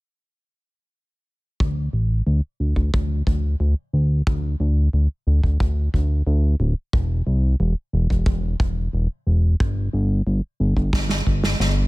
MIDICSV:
0, 0, Header, 1, 3, 480
1, 0, Start_track
1, 0, Tempo, 666667
1, 1152, Time_signature, 4, 2, 24, 8
1, 8549, End_track
2, 0, Start_track
2, 0, Title_t, "Analog synth bass"
2, 0, Program_c, 0, 38
2, 1153, Note_on_c, 0, 38, 91
2, 1360, Note_off_c, 0, 38, 0
2, 1391, Note_on_c, 0, 33, 80
2, 1599, Note_off_c, 0, 33, 0
2, 1632, Note_on_c, 0, 38, 93
2, 1735, Note_off_c, 0, 38, 0
2, 1872, Note_on_c, 0, 38, 87
2, 1976, Note_off_c, 0, 38, 0
2, 1989, Note_on_c, 0, 38, 89
2, 2094, Note_off_c, 0, 38, 0
2, 2115, Note_on_c, 0, 38, 98
2, 2321, Note_off_c, 0, 38, 0
2, 2353, Note_on_c, 0, 38, 88
2, 2560, Note_off_c, 0, 38, 0
2, 2593, Note_on_c, 0, 38, 90
2, 2696, Note_off_c, 0, 38, 0
2, 2832, Note_on_c, 0, 38, 89
2, 3039, Note_off_c, 0, 38, 0
2, 3074, Note_on_c, 0, 38, 88
2, 3280, Note_off_c, 0, 38, 0
2, 3313, Note_on_c, 0, 38, 94
2, 3519, Note_off_c, 0, 38, 0
2, 3552, Note_on_c, 0, 38, 76
2, 3656, Note_off_c, 0, 38, 0
2, 3792, Note_on_c, 0, 38, 78
2, 3896, Note_off_c, 0, 38, 0
2, 3913, Note_on_c, 0, 38, 81
2, 4016, Note_off_c, 0, 38, 0
2, 4034, Note_on_c, 0, 38, 90
2, 4240, Note_off_c, 0, 38, 0
2, 4276, Note_on_c, 0, 38, 87
2, 4481, Note_off_c, 0, 38, 0
2, 4511, Note_on_c, 0, 38, 94
2, 4719, Note_off_c, 0, 38, 0
2, 4751, Note_on_c, 0, 26, 93
2, 4855, Note_off_c, 0, 26, 0
2, 4992, Note_on_c, 0, 28, 94
2, 5199, Note_off_c, 0, 28, 0
2, 5232, Note_on_c, 0, 36, 80
2, 5439, Note_off_c, 0, 36, 0
2, 5472, Note_on_c, 0, 28, 92
2, 5576, Note_off_c, 0, 28, 0
2, 5712, Note_on_c, 0, 28, 89
2, 5815, Note_off_c, 0, 28, 0
2, 5834, Note_on_c, 0, 28, 91
2, 5937, Note_off_c, 0, 28, 0
2, 5948, Note_on_c, 0, 28, 103
2, 6157, Note_off_c, 0, 28, 0
2, 6191, Note_on_c, 0, 28, 86
2, 6399, Note_off_c, 0, 28, 0
2, 6432, Note_on_c, 0, 28, 88
2, 6536, Note_off_c, 0, 28, 0
2, 6671, Note_on_c, 0, 28, 88
2, 6879, Note_off_c, 0, 28, 0
2, 6914, Note_on_c, 0, 31, 88
2, 7120, Note_off_c, 0, 31, 0
2, 7152, Note_on_c, 0, 31, 95
2, 7359, Note_off_c, 0, 31, 0
2, 7392, Note_on_c, 0, 31, 78
2, 7495, Note_off_c, 0, 31, 0
2, 7632, Note_on_c, 0, 31, 81
2, 7736, Note_off_c, 0, 31, 0
2, 7751, Note_on_c, 0, 31, 83
2, 7855, Note_off_c, 0, 31, 0
2, 7869, Note_on_c, 0, 31, 90
2, 8078, Note_off_c, 0, 31, 0
2, 8112, Note_on_c, 0, 31, 88
2, 8319, Note_off_c, 0, 31, 0
2, 8352, Note_on_c, 0, 31, 97
2, 8549, Note_off_c, 0, 31, 0
2, 8549, End_track
3, 0, Start_track
3, 0, Title_t, "Drums"
3, 1153, Note_on_c, 9, 36, 106
3, 1225, Note_off_c, 9, 36, 0
3, 1989, Note_on_c, 9, 36, 50
3, 2061, Note_off_c, 9, 36, 0
3, 2115, Note_on_c, 9, 36, 119
3, 2187, Note_off_c, 9, 36, 0
3, 2353, Note_on_c, 9, 36, 92
3, 2425, Note_off_c, 9, 36, 0
3, 3074, Note_on_c, 9, 36, 122
3, 3146, Note_off_c, 9, 36, 0
3, 3913, Note_on_c, 9, 36, 54
3, 3985, Note_off_c, 9, 36, 0
3, 4034, Note_on_c, 9, 36, 108
3, 4106, Note_off_c, 9, 36, 0
3, 4276, Note_on_c, 9, 36, 55
3, 4348, Note_off_c, 9, 36, 0
3, 4992, Note_on_c, 9, 36, 119
3, 5064, Note_off_c, 9, 36, 0
3, 5834, Note_on_c, 9, 36, 61
3, 5906, Note_off_c, 9, 36, 0
3, 5948, Note_on_c, 9, 36, 116
3, 6020, Note_off_c, 9, 36, 0
3, 6191, Note_on_c, 9, 36, 108
3, 6263, Note_off_c, 9, 36, 0
3, 6914, Note_on_c, 9, 36, 123
3, 6986, Note_off_c, 9, 36, 0
3, 7751, Note_on_c, 9, 36, 53
3, 7823, Note_off_c, 9, 36, 0
3, 7870, Note_on_c, 9, 36, 123
3, 7872, Note_on_c, 9, 38, 55
3, 7942, Note_off_c, 9, 36, 0
3, 7944, Note_off_c, 9, 38, 0
3, 7987, Note_on_c, 9, 38, 49
3, 8059, Note_off_c, 9, 38, 0
3, 8112, Note_on_c, 9, 36, 58
3, 8184, Note_off_c, 9, 36, 0
3, 8233, Note_on_c, 9, 38, 71
3, 8305, Note_off_c, 9, 38, 0
3, 8352, Note_on_c, 9, 38, 80
3, 8424, Note_off_c, 9, 38, 0
3, 8549, End_track
0, 0, End_of_file